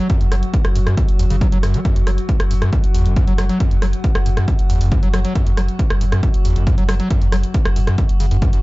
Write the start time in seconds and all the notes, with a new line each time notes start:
Already playing: F#3 F#4
0.10 F#2, kick, closed hi-hat
0.21 F#1 E2, closed hi-hat
0.32 F#1 F#3, cross-stick, open hi-hat
0.43 closed hi-hat
0.54 kick, closed hi-hat
0.65 F#1, cross-stick, closed hi-hat
0.76 F#1 F#2, open hi-hat
0.87 F#2, cross-stick, closed hi-hat
0.97 kick, closed hi-hat
1.08 F#1, closed hi-hat
1.19 F#1 E2, open hi-hat
1.30 F#1 C#3, open hi-hat
1.41 F#3, kick, closed hi-hat
1.52 F#1 F#3, closed hi-hat
1.63 F#1 F#2, cross-stick, open hi-hat
1.74 F#3, closed hi-hat
1.85 F#2, kick, closed hi-hat
1.96 F#1 E2, closed hi-hat
2.07 F#1 F#3, cross-stick, open hi-hat
2.18 closed hi-hat
2.29 kick, closed hi-hat
2.40 F#1, cross-stick, closed hi-hat
2.51 F#1 F#2, open hi-hat
2.62 F#2, cross-stick, closed hi-hat
2.73 F#2, kick, closed hi-hat
2.84 F#1, closed hi-hat
2.94 F#1 E2, open hi-hat
3.06 F#1 F#2, closed hi-hat
3.16 F#2, kick, closed hi-hat
3.27 F#1 F#3, closed hi-hat
3.38 F#1 F#3, cross-stick, open hi-hat
3.49 F#3, closed hi-hat
3.60 F#2, kick, closed hi-hat
3.71 F#1 E2, closed hi-hat
3.82 F#1 F#3, cross-stick, open hi-hat
3.93 closed hi-hat
4.04 kick, closed hi-hat
4.15 F#1, cross-stick, closed hi-hat
4.26 F#1 F#2, open hi-hat
4.37 F#2, cross-stick, closed hi-hat
4.48 F#2, kick, closed hi-hat
4.59 F#1, closed hi-hat
4.70 F#1 E2, open hi-hat
4.81 F#1 F#2, open hi-hat
4.92 kick, closed hi-hat
5.03 F#1 F#3, closed hi-hat
5.14 F#1 F#3, cross-stick, open hi-hat
5.25 F#3, closed hi-hat
5.35 F#2, kick, closed hi-hat
5.46 F#1 E2, closed hi-hat
5.57 F#1 F#3, cross-stick, open hi-hat
5.68 closed hi-hat
5.79 kick, closed hi-hat
5.90 F#1, cross-stick, closed hi-hat
6.01 F#1 F#2, open hi-hat
6.12 F#2, cross-stick, closed hi-hat
6.23 F#2, kick, closed hi-hat
6.34 F#1, closed hi-hat
6.45 F#1 E2, open hi-hat
6.56 F#1 F#2, closed hi-hat
6.67 F#2, kick, closed hi-hat
6.78 F#1 F#3, closed hi-hat
6.89 F#1 F#3, cross-stick, open hi-hat
7.00 F#3, closed hi-hat
7.11 F#2, kick, closed hi-hat
7.22 F#1 E2, closed hi-hat
7.32 F#1 F#3, cross-stick, open hi-hat
7.43 closed hi-hat
7.54 kick, closed hi-hat
7.65 F#1, cross-stick, closed hi-hat
7.76 F#1 F#2, open hi-hat
7.87 F#2, cross-stick, closed hi-hat
7.98 F#2, kick, closed hi-hat
8.09 F#1, closed hi-hat
8.20 F#1 C#3, open hi-hat
8.31 F#1 F#2, open hi-hat
8.42 F#2, kick, closed hi-hat
8.53 F#1 F#2, closed hi-hat